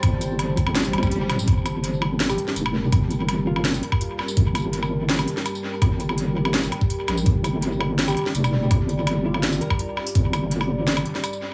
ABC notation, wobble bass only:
X:1
M:4/4
L:1/8
Q:1/4=166
K:Gm
V:1 name="Wobble bass" clef=bass
G,,,4- G,,, G,,, G,,, D,,, | G,,,4- G,,, z F,,,2 | G,,,4- G,,, z3 | G,,,4- G,,, z3 |
G,,,4- G,,, z2 B,,, | G,,,4- G,,, z F,,,2 | G,,,4- G,,, z3 | G,,,4- G,,, z3 |]